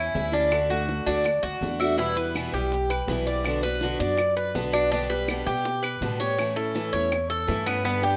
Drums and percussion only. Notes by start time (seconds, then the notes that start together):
0.15 high bongo, low bongo
0.34 high bongo
0.52 high bongo, claves
0.70 high bongo
0.89 high bongo
1.07 high bongo
1.25 high bongo, claves
1.63 high bongo, low bongo
1.80 high bongo, claves
1.99 high bongo
2.35 high bongo, claves
2.54 high bongo
2.72 high bongo
2.90 high bongo, claves
3.08 high bongo, low bongo
3.26 high bongo
3.44 high bongo, claves
3.63 high bongo
3.81 high bongo
4.17 high bongo, claves
4.36 high bongo
4.55 high bongo, low bongo
4.73 high bongo, claves
4.92 high bongo
5.28 high bongo, claves
5.47 high bongo
5.65 high bongo
5.84 high bongo, claves
6.02 high bongo, low bongo
6.20 high bongo
6.39 high bongo, claves
6.57 high bongo
6.76 high bongo
7.12 high bongo, claves
7.31 high bongo
7.48 high bongo, low bongo
7.66 high bongo, claves
7.85 high bongo